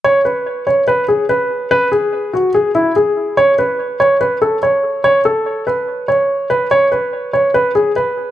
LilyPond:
\new Staff \with { instrumentName = "Grand piano" } { \time 4/4 \key cis \minor \tempo 4 = 144 cis''8 b'4 cis''8 b'8 gis'8 b'4 | b'8 gis'4 fis'8 gis'8 e'8 gis'4 | cis''8 b'4 cis''8 b'8 a'8 cis''4 | cis''8 a'4 b'4 cis''4 b'8 |
cis''8 b'4 cis''8 b'8 gis'8 b'4 | }